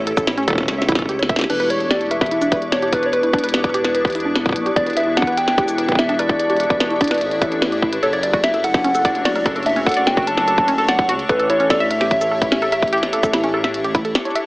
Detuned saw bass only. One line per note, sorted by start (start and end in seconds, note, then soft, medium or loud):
0.00 0.12 A1 loud
0.17 0.70 A1 medium
0.68 1.45 C#2 loud
1.50 3.39 E1 loud
3.44 4.57 E1 medium
4.56 4.70 B1 medium
4.76 6.65 E1 loud
6.70 7.23 E1 medium
7.21 7.98 A1 loud
8.03 9.92 F#1 loud
9.97 11.10 F#1 medium
11.09 11.23 C#2 medium
11.29 13.18 A1 loud
13.23 14.15 A1 medium